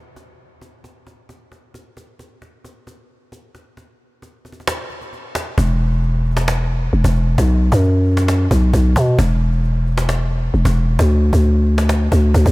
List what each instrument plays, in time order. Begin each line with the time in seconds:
0.16 cajon slap
0.61 cajon slap
0.84 cajon slap
1.07 cajon slap
1.29 cajon slap
1.52 cajon slap
1.74 cajon slap
1.97 cajon slap
2.19 cajon slap
2.42 cajon slap
2.64 cajon slap
2.87 cajon slap
3.32 cajon slap
3.55 cajon slap
3.77 cajon slap
4.22 cajon slap
4.45 cajon slap
4.52 cajon slap
4.60 cajon slap
4.67 cajon slap
4.90 cajon slap
5.01 cajon slap
5.13 cajon slap
5.35 cajon slap
5.58 808-style bass E1, cajon bass
5.80 cajon slap
5.92 cajon slap
6.03 cajon slap
6.25 cajon slap
6.31 cajon slap
6.37 cajon slap
6.42 cajon slap
6.48 cajon slap
6.93 808-style bass E1, cajon slap
7.04 808-style bass E1, cajon bass
7.16 cajon slap
7.38 808-style bass B1, cajon bass
7.72 808-style bass F#2, cajon bass
7.83 cajon slap
8.06 cajon slap
8.11 cajon slap
8.17 cajon slap
8.23 cajon slap
8.28 cajon slap
8.51 808-style bass B1, cajon bass
8.73 808-style bass B1, cajon bass
8.79 cajon slap
8.85 cajon slap
8.90 cajon slap
8.96 808-style bass B2, cajon bass
9.19 808-style bass E1, cajon bass
9.41 cajon slap
9.52 cajon slap
9.64 cajon slap
9.86 cajon slap
9.92 cajon slap
9.98 cajon slap
10.03 cajon slap
10.09 cajon slap
10.54 808-style bass E1, cajon slap
10.65 808-style bass E1, cajon bass
10.76 cajon slap
10.99 808-style bass D2, cajon bass
11.33 808-style bass D2, cajon bass
11.44 cajon slap
11.67 cajon slap
11.78 cajon slap
11.89 cajon slap
12.12 808-style bass D2, cajon bass
12.34 808-style bass D2, cajon bass
12.46 808-style bass D2, cajon bass